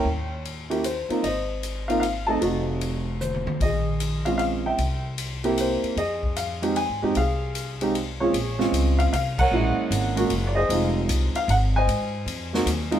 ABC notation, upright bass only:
X:1
M:3/4
L:1/8
Q:"Swing" 1/4=152
K:Fm
V:1 name="Upright bass" clef=bass
E,,4- E,, z | A,,,6 | F,,,4- F,,, F,, | B,,,6 |
C,,4- C,, z | F,,4- (3F,, A,, _G,, | C,,6 | [K:Bbm] B,,,2 D,,2 C,,2 |
B,,, z A,,,2 G,,,2 | F,,,2 C,, z A,,,2 | A,,2 F,,2 E,,2 |]